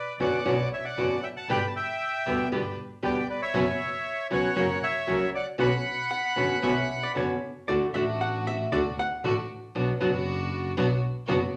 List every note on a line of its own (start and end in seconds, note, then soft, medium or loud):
0.00 0.16 B4 medium
0.00 0.19 D5 medium
0.19 0.41 F#1 medium
0.19 0.37 B2 medium
0.19 0.37 D3 medium
0.19 0.37 B3 medium
0.19 0.41 C#4 soft
0.19 0.37 C#4 medium
0.19 0.41 D4 soft
0.19 0.37 F#4 medium
0.19 0.41 B4 soft
0.19 0.68 D5 medium
0.19 0.69 F#5 medium
0.45 0.67 B1 medium
0.45 0.54 B2 medium
0.45 0.55 D3 medium
0.45 0.55 B3 medium
0.45 0.67 C#4 medium
0.45 0.55 C#4 medium
0.45 0.67 D4 medium
0.45 0.55 F#4 medium
0.45 0.67 B4 medium
0.73 0.84 C#5 medium
0.73 0.86 E5 medium
0.85 1.20 D5 medium
0.85 1.24 F#5 medium
0.97 1.19 F#1 medium
0.97 1.14 B2 medium
0.97 1.14 D3 soft
0.97 1.14 B3 medium
0.97 1.18 C#4 soft
0.97 1.15 C#4 soft
0.97 1.19 D4 soft
0.97 1.15 F#4 medium
0.97 1.19 B4 soft
1.23 1.29 E5 medium
1.23 1.29 G5 medium
1.37 1.48 F#5 medium
1.37 1.50 A5 medium
1.48 1.70 G1 medium
1.48 1.58 B2 medium
1.48 1.58 D3 medium
1.48 1.58 G3 medium
1.48 1.58 B3 medium
1.48 1.70 D4 medium
1.48 1.70 G4 medium
1.48 1.58 G4 medium
1.48 1.70 B4 medium
1.48 1.67 G5 medium
1.48 1.69 B5 medium
1.67 1.74 A5 medium
1.76 2.48 E5 soft
1.76 2.49 G5 medium
2.26 2.48 D2 medium
2.26 2.43 B2 medium
2.26 2.43 D3 medium
2.26 2.43 G3 medium
2.26 2.43 B3 medium
2.26 2.47 D4 soft
2.26 2.47 G4 soft
2.26 2.44 G4 medium
2.26 2.48 B4 soft
2.52 2.73 G1 medium
2.52 2.61 B2 medium
2.52 2.61 D3 medium
2.52 2.61 G3 medium
2.52 2.61 B3 medium
2.52 2.73 D4 medium
2.52 2.73 G4 medium
2.52 2.61 G4 medium
2.52 2.73 B4 medium
3.02 3.25 D2 medium
3.02 3.20 B2 medium
3.02 3.20 D3 medium
3.02 3.20 G3 medium
3.02 3.20 B3 medium
3.02 3.25 D4 soft
3.02 3.20 G4 medium
3.02 3.25 G4 soft
3.02 3.25 B4 medium
3.02 3.28 D5 medium
3.02 3.27 G5 medium
3.30 3.41 B4 medium
3.30 3.41 D5 medium
3.42 4.27 C#5 medium
3.42 4.27 E5 medium
3.54 3.76 F#1 medium
3.54 3.63 B2 medium
3.54 3.63 F#3 medium
3.54 3.63 B3 medium
3.54 3.76 C#4 medium
3.54 3.63 C#4 medium
3.54 3.76 F#4 medium
3.54 3.63 F#4 medium
3.54 3.76 B4 medium
4.30 4.53 C#2 medium
4.30 4.48 B2 medium
4.30 4.48 F#3 medium
4.30 4.48 B3 medium
4.30 4.53 C#4 medium
4.30 4.48 C#4 medium
4.30 4.53 F#4 soft
4.30 4.48 F#4 medium
4.30 4.53 B4 medium
4.30 4.79 C#5 medium
4.30 4.85 F#5 medium
4.56 4.78 F#1 medium
4.56 4.65 C#3 medium
4.56 4.65 F#3 medium
4.56 4.65 A#3 medium
4.56 4.65 C#4 medium
4.56 4.78 C#4 medium
4.56 4.66 F#4 medium
4.56 4.78 F#4 medium
4.56 4.78 A#4 medium
4.83 5.30 C#5 medium
4.83 5.31 E5 medium
5.07 5.29 C#2 medium
5.07 5.24 C#3 medium
5.07 5.24 F#3 medium
5.07 5.25 A#3 medium
5.07 5.25 C#4 medium
5.07 5.30 C#4 soft
5.07 5.25 F#4 medium
5.07 5.30 F#4 soft
5.07 5.30 A#4 medium
5.35 5.46 D5 medium
5.35 5.47 F#5 medium
5.58 5.81 B1 medium
5.58 5.68 B2 medium
5.58 5.68 D3 medium
5.58 5.68 B3 medium
5.58 5.68 C#4 medium
5.58 5.81 C#4 medium
5.58 5.81 D4 medium
5.58 5.68 F#4 medium
5.58 5.81 B4 medium
5.58 7.12 F#5 medium
5.58 7.12 B5 medium
6.11 6.59 F#5 medium
6.36 6.59 F#1 medium
6.36 6.53 B2 medium
6.36 6.54 D3 medium
6.36 6.54 B3 medium
6.36 6.58 C#4 soft
6.36 6.54 C#4 medium
6.36 6.59 D4 soft
6.36 6.54 F#4 medium
6.36 6.59 B4 medium
6.62 6.85 B1 medium
6.62 6.72 B2 medium
6.62 6.72 D3 medium
6.62 6.72 B3 medium
6.62 6.85 C#4 medium
6.62 6.72 C#4 medium
6.62 6.85 D4 medium
6.62 6.72 F#4 medium
6.62 6.85 B4 medium
6.62 7.04 E5 medium
7.03 7.16 D5 medium
7.15 7.38 F#1 medium
7.15 7.33 B2 soft
7.15 7.33 D3 medium
7.15 7.33 B3 medium
7.15 7.38 C#4 soft
7.15 7.33 C#4 medium
7.15 7.38 D4 soft
7.15 7.33 F#4 medium
7.15 7.38 B4 soft
7.15 7.65 C#5 medium
7.68 7.90 D2 medium
7.68 7.85 D3 medium
7.68 7.90 A3 soft
7.68 7.85 A3 medium
7.68 7.90 D4 soft
7.68 7.86 D4 medium
7.68 7.90 F#4 soft
7.68 7.85 F#4 medium
7.68 7.95 D5 medium
7.94 8.68 A1 loud
7.94 8.03 D3 medium
7.94 8.68 A3 medium
7.94 8.03 A3 medium
7.94 8.68 D4 medium
7.94 8.04 D4 medium
7.94 8.68 F#4 medium
7.94 8.04 F#4 medium
7.94 8.21 E5 medium
8.21 8.47 F#5 medium
8.47 8.73 E5 medium
8.72 8.94 D2 medium
8.72 8.81 D3 medium
8.72 8.94 A3 medium
8.72 8.81 A3 medium
8.72 8.94 D4 medium
8.72 8.81 D4 medium
8.72 8.81 F#4 medium
8.72 8.94 F#4 medium
8.72 8.99 D5 medium
8.99 9.97 F#5 medium
9.24 9.45 A1 medium
9.24 9.33 D3 medium
9.24 9.45 A3 medium
9.24 9.33 A3 medium
9.24 9.45 D4 medium
9.24 9.33 D4 medium
9.24 9.45 F#4 medium
9.24 9.33 F#4 medium
9.75 9.97 B1 medium
9.75 9.92 B2 medium
9.75 9.92 F#3 medium
9.75 9.96 B3 soft
9.75 9.92 B3 medium
9.75 9.97 D4 soft
9.75 9.92 D4 medium
9.75 9.97 F#4 soft
9.75 9.92 F#4 medium
10.00 10.74 F#1 loud
10.00 10.09 B2 medium
10.00 10.10 F#3 medium
10.00 10.73 B3 medium
10.00 10.09 B3 medium
10.00 10.73 D4 medium
10.00 10.10 D4 medium
10.00 10.74 F#4 medium
10.00 10.10 F#4 medium
10.77 10.99 B1 medium
10.77 10.86 B2 medium
10.77 10.86 F#3 medium
10.77 10.99 B3 medium
10.77 10.86 B3 medium
10.77 10.99 D4 medium
10.77 10.86 D4 medium
10.77 10.99 F#4 medium
10.77 10.86 F#4 medium
11.27 11.50 F#1 medium
11.27 11.37 B2 medium
11.27 11.37 F#3 medium
11.27 11.49 B3 medium
11.27 11.37 B3 medium
11.27 11.49 D4 medium
11.27 11.37 D4 medium
11.27 11.50 F#4 medium
11.27 11.38 F#4 medium